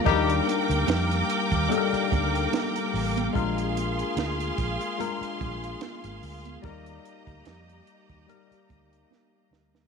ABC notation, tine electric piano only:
X:1
M:4/4
L:1/8
Q:"Swing 16ths" 1/4=73
K:Eb
V:1 name="Tine electric piano"
[F,G,DEB]3 z [G,DE=AB]3 z | [A,DFB]3 z [A,DFB]3 z | [G,EBd]3 z [G,EBd]3 z |]